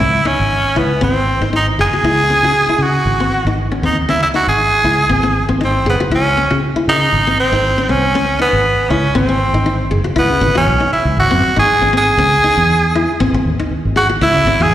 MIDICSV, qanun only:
0, 0, Header, 1, 2, 480
1, 0, Start_track
1, 0, Key_signature, 4, "minor"
1, 0, Tempo, 509338
1, 5, Time_signature, 4, 2, 24, 8
1, 5764, Tempo, 505476
1, 13957, End_track
2, 0, Start_track
2, 0, Title_t, "Qanun"
2, 0, Program_c, 0, 107
2, 0, Note_on_c, 0, 61, 82
2, 154, Note_off_c, 0, 61, 0
2, 238, Note_on_c, 0, 63, 73
2, 396, Note_off_c, 0, 63, 0
2, 716, Note_on_c, 0, 64, 74
2, 875, Note_off_c, 0, 64, 0
2, 953, Note_on_c, 0, 60, 91
2, 1042, Note_off_c, 0, 60, 0
2, 1334, Note_on_c, 0, 63, 69
2, 1407, Note_off_c, 0, 63, 0
2, 1441, Note_on_c, 0, 63, 68
2, 1598, Note_off_c, 0, 63, 0
2, 1687, Note_on_c, 0, 68, 67
2, 1772, Note_off_c, 0, 68, 0
2, 1821, Note_on_c, 0, 66, 66
2, 1891, Note_off_c, 0, 66, 0
2, 1927, Note_on_c, 0, 64, 83
2, 2083, Note_off_c, 0, 64, 0
2, 2167, Note_on_c, 0, 61, 69
2, 2252, Note_off_c, 0, 61, 0
2, 2302, Note_on_c, 0, 66, 76
2, 2457, Note_off_c, 0, 66, 0
2, 2537, Note_on_c, 0, 64, 61
2, 2693, Note_off_c, 0, 64, 0
2, 3018, Note_on_c, 0, 60, 74
2, 3174, Note_off_c, 0, 60, 0
2, 3267, Note_on_c, 0, 63, 72
2, 3420, Note_off_c, 0, 63, 0
2, 3502, Note_on_c, 0, 61, 68
2, 3572, Note_off_c, 0, 61, 0
2, 3613, Note_on_c, 0, 60, 71
2, 3767, Note_off_c, 0, 60, 0
2, 3851, Note_on_c, 0, 61, 84
2, 4005, Note_off_c, 0, 61, 0
2, 4090, Note_on_c, 0, 63, 76
2, 4245, Note_off_c, 0, 63, 0
2, 4565, Note_on_c, 0, 64, 67
2, 4721, Note_off_c, 0, 64, 0
2, 4801, Note_on_c, 0, 60, 86
2, 4887, Note_off_c, 0, 60, 0
2, 4931, Note_on_c, 0, 60, 72
2, 5088, Note_off_c, 0, 60, 0
2, 5170, Note_on_c, 0, 60, 76
2, 5243, Note_off_c, 0, 60, 0
2, 5284, Note_on_c, 0, 63, 72
2, 5439, Note_off_c, 0, 63, 0
2, 5523, Note_on_c, 0, 68, 81
2, 5608, Note_off_c, 0, 68, 0
2, 5657, Note_on_c, 0, 66, 77
2, 5727, Note_off_c, 0, 66, 0
2, 5762, Note_on_c, 0, 64, 91
2, 5919, Note_off_c, 0, 64, 0
2, 6008, Note_on_c, 0, 61, 71
2, 6092, Note_off_c, 0, 61, 0
2, 6133, Note_on_c, 0, 66, 77
2, 6290, Note_off_c, 0, 66, 0
2, 6375, Note_on_c, 0, 64, 76
2, 6531, Note_off_c, 0, 64, 0
2, 6861, Note_on_c, 0, 60, 76
2, 7015, Note_off_c, 0, 60, 0
2, 7102, Note_on_c, 0, 63, 71
2, 7256, Note_off_c, 0, 63, 0
2, 7343, Note_on_c, 0, 61, 70
2, 7413, Note_off_c, 0, 61, 0
2, 7450, Note_on_c, 0, 60, 72
2, 7605, Note_off_c, 0, 60, 0
2, 7696, Note_on_c, 0, 61, 91
2, 7849, Note_off_c, 0, 61, 0
2, 7927, Note_on_c, 0, 63, 68
2, 8083, Note_off_c, 0, 63, 0
2, 8411, Note_on_c, 0, 64, 80
2, 8566, Note_off_c, 0, 64, 0
2, 8644, Note_on_c, 0, 60, 100
2, 8730, Note_off_c, 0, 60, 0
2, 8775, Note_on_c, 0, 60, 72
2, 8931, Note_off_c, 0, 60, 0
2, 9017, Note_on_c, 0, 63, 76
2, 9089, Note_off_c, 0, 63, 0
2, 9127, Note_on_c, 0, 63, 72
2, 9283, Note_off_c, 0, 63, 0
2, 9365, Note_on_c, 0, 68, 73
2, 9451, Note_off_c, 0, 68, 0
2, 9492, Note_on_c, 0, 66, 69
2, 9566, Note_off_c, 0, 66, 0
2, 9602, Note_on_c, 0, 64, 91
2, 9759, Note_off_c, 0, 64, 0
2, 9843, Note_on_c, 0, 61, 77
2, 9929, Note_off_c, 0, 61, 0
2, 9976, Note_on_c, 0, 66, 80
2, 10132, Note_off_c, 0, 66, 0
2, 10214, Note_on_c, 0, 63, 66
2, 10370, Note_off_c, 0, 63, 0
2, 10693, Note_on_c, 0, 60, 81
2, 10849, Note_off_c, 0, 60, 0
2, 10937, Note_on_c, 0, 63, 78
2, 11092, Note_off_c, 0, 63, 0
2, 11178, Note_on_c, 0, 61, 65
2, 11249, Note_off_c, 0, 61, 0
2, 11284, Note_on_c, 0, 60, 82
2, 11440, Note_off_c, 0, 60, 0
2, 11527, Note_on_c, 0, 61, 85
2, 11681, Note_off_c, 0, 61, 0
2, 11769, Note_on_c, 0, 63, 81
2, 11923, Note_off_c, 0, 63, 0
2, 12257, Note_on_c, 0, 64, 83
2, 12408, Note_off_c, 0, 64, 0
2, 12492, Note_on_c, 0, 60, 101
2, 12574, Note_off_c, 0, 60, 0
2, 12627, Note_on_c, 0, 60, 73
2, 12778, Note_off_c, 0, 60, 0
2, 12866, Note_on_c, 0, 63, 74
2, 12933, Note_off_c, 0, 63, 0
2, 13211, Note_on_c, 0, 68, 82
2, 13293, Note_off_c, 0, 68, 0
2, 13339, Note_on_c, 0, 66, 78
2, 13408, Note_off_c, 0, 66, 0
2, 13453, Note_on_c, 0, 64, 90
2, 13605, Note_off_c, 0, 64, 0
2, 13695, Note_on_c, 0, 61, 79
2, 13776, Note_off_c, 0, 61, 0
2, 13824, Note_on_c, 0, 66, 81
2, 13957, Note_off_c, 0, 66, 0
2, 13957, End_track
0, 0, End_of_file